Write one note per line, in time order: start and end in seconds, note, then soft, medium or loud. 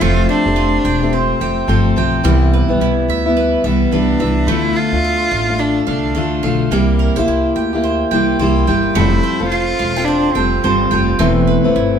0.00 0.24 F1 loud
0.00 0.46 F3 medium
0.00 2.24 A3 medium
0.00 0.46 A3 medium
0.00 0.46 C4 medium
0.00 0.29 F4 loud
0.00 0.45 G4 loud
0.00 0.29 C5 medium
0.29 1.16 D4 loud
0.29 1.12 C5 medium
0.45 0.78 F1 medium
0.45 1.02 A3 medium
0.45 1.02 C4 medium
0.45 1.01 G4 medium
0.56 2.31 F4 medium
0.85 1.31 E1 loud
0.85 1.41 G5 medium
1.01 1.40 A3 soft
1.01 1.41 C4 medium
1.01 1.41 G4 medium
1.13 1.70 C4 medium
1.13 1.69 C5 medium
1.40 1.64 F1 medium
1.40 1.66 F3 soft
1.40 1.67 A3 medium
1.40 1.67 C4 medium
1.40 1.68 G4 medium
1.40 1.97 G5 medium
1.67 1.91 G1 loud
1.67 1.95 F3 medium
1.67 1.95 A3 medium
1.67 1.96 C4 medium
1.67 1.97 G4 medium
1.67 2.53 C5 medium
1.96 2.20 B1 medium
1.96 2.23 F3 medium
1.96 2.24 A3 medium
1.96 2.24 C4 medium
1.96 2.24 G4 medium
1.96 3.09 G5 medium
2.23 2.61 C2 loud
2.23 2.69 C3 medium
2.23 2.69 E3 medium
2.23 2.69 G3 medium
2.23 4.48 G3 loud
2.23 2.68 B3 medium
2.23 2.67 E4 loud
2.54 3.35 B4 medium
2.68 2.78 B1 medium
2.68 3.26 G3 medium
2.68 3.25 B3 medium
2.68 3.25 E4 medium
2.80 3.04 C2 loud
2.80 4.56 E4 medium
3.08 3.54 D2 medium
3.08 3.63 E5 medium
3.26 3.64 G3 soft
3.26 3.65 B3 medium
3.26 3.65 E4 medium
3.37 3.91 B4 medium
3.64 3.87 C2 medium
3.64 3.91 E3 medium
3.64 3.92 G3 medium
3.64 3.92 B3 medium
3.64 3.93 E4 medium
3.64 4.19 E5 medium
3.91 4.15 C2 medium
3.91 4.19 E3 medium
3.91 4.20 G3 medium
3.91 4.20 B3 medium
3.91 4.50 D4 loud
3.91 4.21 E4 medium
3.91 4.55 B4 medium
4.20 4.43 C2 loud
4.20 4.47 E3 medium
4.20 4.48 G3 medium
4.20 4.48 B3 medium
4.20 4.49 E4 medium
4.20 4.55 E5 medium
4.47 4.71 D2 loud
4.47 4.93 D3 medium
4.47 6.71 A3 medium
4.47 4.93 A3 medium
4.47 4.92 D4 medium
4.47 4.78 E4 loud
4.47 4.92 F4 medium
4.76 5.61 F4 loud
4.76 5.58 A4 medium
4.92 5.25 D2 loud
4.92 5.50 A3 soft
4.92 5.49 D4 soft
4.92 5.48 F4 soft
5.04 6.79 F4 medium
5.31 5.78 A1 loud
5.31 5.85 F5 medium
5.49 5.87 A3 soft
5.49 5.88 D4 medium
5.49 5.88 F4 medium
5.59 5.88 D4 loud
5.59 6.14 A4 medium
5.87 6.15 C2 medium
5.87 6.14 D3 soft
5.87 6.15 A3 medium
5.87 6.16 D4 medium
5.87 6.41 D4 medium
5.87 6.16 F4 medium
5.87 6.42 F5 medium
6.15 6.39 D2 medium
6.15 6.42 D3 medium
6.15 6.43 A3 medium
6.15 6.43 D4 medium
6.15 6.44 F4 medium
6.15 6.78 A4 medium
6.43 6.66 B1 medium
6.43 6.72 D3 medium
6.43 6.72 A3 medium
6.43 6.72 D4 medium
6.43 6.73 F4 medium
6.43 6.78 F5 medium
6.71 7.08 C2 loud
6.71 7.17 C3 medium
6.71 7.17 G3 loud
6.71 8.95 A#3 medium
6.71 7.17 A#3 medium
6.71 7.18 E4 medium
6.71 7.16 G4 medium
6.99 7.16 A#4 medium
7.16 7.26 A#1 medium
7.16 7.74 A#3 medium
7.16 7.74 E4 medium
7.16 7.73 G4 medium
7.16 7.82 C5 medium
7.27 7.51 C2 medium
7.27 9.03 E4 medium
7.56 8.02 D2 medium
7.56 8.11 G5 medium
7.73 8.12 A#3 medium
7.73 8.13 E4 medium
7.73 8.12 G4 medium
7.84 8.39 C5 medium
8.11 8.35 C2 medium
8.11 8.40 G3 medium
8.11 8.41 A#3 medium
8.11 8.41 E4 medium
8.11 8.41 G4 medium
8.11 8.67 G5 medium
8.39 8.63 C2 loud
8.39 8.66 G3 medium
8.39 8.67 A#3 medium
8.39 8.67 E4 medium
8.39 9.23 C5 medium
8.43 8.68 G4 loud
8.67 8.91 G1 medium
8.67 8.95 G3 medium
8.67 8.96 A#3 medium
8.67 8.96 E4 medium
8.67 8.96 G4 medium
8.67 9.55 G5 medium
8.95 9.19 F1 loud
8.95 9.41 F3 medium
8.95 9.41 G3 medium
8.95 11.19 A3 loud
8.95 9.41 C4 medium
8.95 9.48 E4 loud
8.95 9.39 A4 medium
9.23 10.07 C5 medium
9.40 9.73 F1 medium
9.40 9.99 C4 soft
9.40 9.96 F4 medium
9.40 9.96 A4 medium
9.50 10.06 F4 loud
9.50 11.27 F4 medium
9.79 10.26 E1 loud
9.79 9.96 F5 medium
9.96 10.35 C4 soft
9.96 10.35 F4 medium
9.96 10.36 A4 medium
9.96 10.34 G5 medium
10.05 10.35 D4 loud
10.05 10.63 C5 medium
10.34 10.59 F1 medium
10.34 10.62 G3 medium
10.34 10.91 C4 loud
10.34 10.63 C4 medium
10.34 10.64 F4 medium
10.34 10.64 A4 medium
10.34 10.90 G5 medium
10.64 10.87 G1 loud
10.64 10.89 G3 medium
10.64 10.90 C4 medium
10.64 10.91 F4 medium
10.64 10.92 A4 medium
10.64 11.47 C5 medium
10.90 11.15 F1 loud
10.90 11.19 G3 medium
10.90 11.19 C4 medium
10.90 11.20 F4 medium
10.90 11.21 A4 medium
10.90 11.26 G5 medium
11.19 11.56 E1 loud
11.19 11.64 E2 loud
11.19 11.65 E3 medium
11.19 11.64 A3 medium
11.19 11.99 C4 loud
11.19 11.64 C4 medium
11.19 11.63 E4 medium
11.19 11.63 B4 loud
11.47 11.99 B4 medium
11.64 11.74 F1 medium
11.64 11.99 A3 medium
11.64 11.99 C4 medium
11.64 11.99 E4 medium
11.64 11.99 B4 medium
11.76 11.99 G1 medium
11.76 11.99 E4 medium